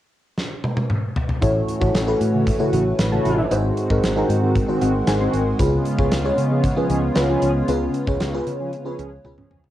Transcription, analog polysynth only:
2.34 2.45 C#3 medium
2.34 2.45 A3 medium
2.34 2.45 F#4 medium
2.59 2.71 C#3 medium
2.59 2.71 A3 medium
2.59 2.71 F#4 medium
2.73 2.84 C#3 medium
2.73 2.84 A3 medium
2.73 2.84 F#4 loud
3.12 3.45 C#3 medium
3.12 3.45 A3 medium
3.12 3.45 F#4 loud
4.42 4.53 D#3 medium
4.42 4.53 C4 medium
4.42 4.53 F#4 medium
4.68 4.79 D#3 medium
4.68 4.80 C4 medium
4.68 4.79 F#4 medium
4.81 4.92 D#3 medium
4.81 4.92 C4 medium
4.81 4.92 F#4 loud
5.20 5.43 D#3 medium
5.20 5.43 C4 medium
5.20 5.43 F#4 loud
6.51 6.62 F3 medium
6.51 6.62 C#4 medium
6.51 6.62 G#4 medium
6.77 6.88 F3 medium
6.77 6.88 C#4 medium
6.77 6.88 G#4 medium
6.90 7.01 F3 medium
6.90 7.01 C#4 loud
6.90 7.01 G#4 loud
7.29 7.51 F3 medium
7.29 7.51 C#4 medium
7.29 7.51 G#4 loud
8.60 8.71 F3 medium
8.60 8.71 C#4 medium
8.60 8.71 G#4 medium
8.86 8.97 F3 medium
8.86 8.97 C#4 medium
8.86 8.97 G#4 medium
8.99 9.10 F3 medium
8.99 9.10 C#4 medium
8.99 9.10 G#4 loud
9.38 9.60 F3 medium
9.38 9.60 C#4 medium
9.38 9.60 G#4 loud

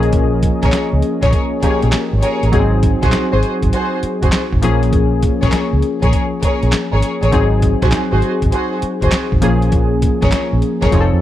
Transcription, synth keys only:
0.00 1.59 F3 medium
0.00 1.59 A#3 medium
0.00 1.60 C#4 medium
0.00 1.63 G#4 medium
0.00 2.55 A#4 medium
0.00 2.54 D#5 medium
1.63 2.53 F3 medium
1.63 2.52 A#3 medium
1.63 2.53 C#4 medium
1.63 1.72 G4 medium
1.70 2.53 G#4 medium
2.52 4.58 F#3 medium
2.52 2.61 A#3 medium
2.52 4.59 D#4 medium
2.52 4.59 G#4 medium
2.59 4.62 C4 medium
4.62 6.98 F3 medium
4.62 6.99 A#3 medium
4.62 6.99 C#4 medium
4.62 6.99 G#4 medium
7.32 9.38 F#3 medium
7.32 9.38 C4 medium
7.32 9.39 D#4 medium
7.32 9.39 G#4 medium
9.41 10.89 F3 medium
9.41 10.89 A#3 medium
9.41 10.90 C#4 medium
9.41 10.90 G#4 medium
10.92 11.21 F3 medium
10.92 11.21 C4 medium
10.92 11.21 D#4 medium
10.92 11.02 G#4 medium
11.00 11.21 A4 medium

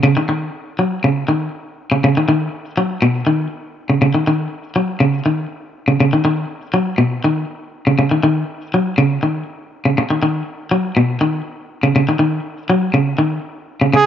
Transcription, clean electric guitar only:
0.03 0.14 C#3 medium
0.17 0.26 D#3 medium
0.29 0.49 D#3 medium
0.79 0.99 F#3 medium
1.04 1.24 C#3 medium
1.28 1.48 D#3 medium
1.92 2.01 C#3 medium
2.04 2.14 C#3 medium
2.17 2.26 D#3 medium
2.29 2.48 D#3 medium
2.77 2.97 F#3 medium
3.02 3.22 B2 medium
3.27 3.46 D#3 medium
3.90 3.99 C#3 medium
4.02 4.12 C#3 medium
4.15 4.24 D#3 medium
4.27 4.47 D#3 medium
4.76 4.96 F#3 medium
5.00 5.20 C#3 medium
5.26 5.45 D#3 medium
5.88 5.97 C#3 medium
6.00 6.10 C#3 medium
6.13 6.23 D#3 medium
6.25 6.44 D#3 medium
6.74 6.94 F#3 medium
6.98 7.18 B2 medium
7.24 7.44 D#3 medium
7.87 7.96 C#3 medium
7.99 8.09 C#3 medium
8.11 8.21 D#3 medium
8.23 8.43 D#3 medium
8.74 8.93 F#3 medium
8.98 9.18 C#3 medium
9.23 9.42 D#3 medium
9.85 9.95 C#3 medium
9.98 muted clean electric guitar stroke medium
10.11 10.20 D#3 medium
10.23 10.42 D#3 medium
10.71 10.91 F#3 medium
10.97 11.16 B2 medium
11.21 11.41 D#3 medium
11.83 11.93 C#3 medium
11.96 12.06 C#3 medium
12.09 12.18 D#3 medium
12.19 12.39 D#3 medium
12.70 12.89 F#3 medium
12.94 13.14 C#3 medium
13.18 13.38 D#3 medium
13.81 13.91 C#3 medium
13.93 14.04 C#3 medium

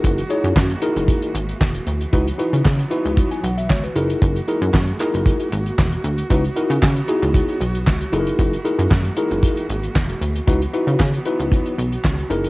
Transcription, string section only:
0.00 6.26 E3 medium
0.00 2.11 G#3 medium
0.00 2.11 A#3 medium
0.00 2.09 F#4 loud
2.13 3.94 F#3 medium
2.13 3.94 B3 medium
2.13 12.50 F#4 medium
3.95 6.28 G#3 medium
3.95 6.28 A#3 medium
6.30 12.50 E3 medium
6.30 8.11 F#3 medium
6.30 8.11 B3 medium
8.13 10.45 G#3 medium
8.13 10.45 A#3 medium
10.47 12.28 F#3 medium
10.47 12.28 B3 medium
12.30 12.50 G#3 medium
12.30 12.50 A#3 medium

